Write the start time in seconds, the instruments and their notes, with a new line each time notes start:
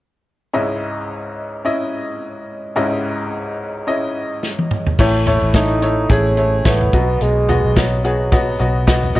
0.53 upright piano C#2 G#2 C#4 E4 D#5
1.65 upright piano C#4 E4 D#5
2.76 upright piano C#2 G#2 C#4 E4 D#5
3.87 upright piano C#4 E4 D#5
4.43 snare
4.59 high tom
4.71 mid tom
4.86 floor tom
4.99 fingered electric bass A1, upright piano A2 E3 A3 E4 C#5, kick, crash
5.27 upright piano A3 E4 C#5, closed hi-hat, floor tom
5.42 fingered electric bass A1
5.54 upright piano A3 E4 C#5, bassoon D#4, kick, snare, closed hi-hat
5.82 upright piano A3 E4 C#5, closed hi-hat
6.10 fingered electric bass A1, upright piano A3 E4 G#4, bassoon C#4, kick, closed hi-hat
6.37 upright piano A3 E4 C#5, closed hi-hat
6.65 fingered electric bass A1, upright piano A3 E4 C#5, bassoon B3, kick, snare, closed hi-hat
6.81 floor tom
6.93 fingered electric bass B1, upright piano B2 F#3 B3 F#4 D#5, kick, closed hi-hat
7.21 fingered electric bass B1, bassoon G#3, closed hi-hat
7.49 upright piano B3 F#4 D#5, closed hi-hat, floor tom
7.64 fingered electric bass B1
7.76 bassoon F#3, upright piano B3 F#4 D#5, kick, snare, closed hi-hat
8.04 bassoon F#3, upright piano B3 F#4 G#4, closed hi-hat
8.32 upright piano B3 F#4 D#5, kick, closed hi-hat
8.59 fingered electric bass B1, upright piano B3 F#4 D#5, closed hi-hat
8.87 upright piano B3 F#4 D#5, kick, snare, closed hi-hat
9.03 floor tom
9.15 fingered electric bass B1, upright piano B3 F#4 D#5, closed hi-hat